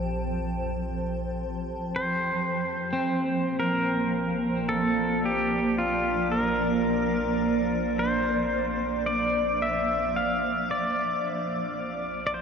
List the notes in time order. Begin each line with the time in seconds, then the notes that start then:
Already playing: A#1 F3 C5 G5 A5
1.96 C5
2.50 A#1 A#3
2.93 C4
3.60 A#4
3.84 D5
4.69 A4
5.25 G4
5.78 F4
6.32 A#4
7.99 C5
9.06 D5
9.62 E5
10.16 F5
10.71 D5
11.23 A#1
11.51 A5
12.27 D5
12.34 C5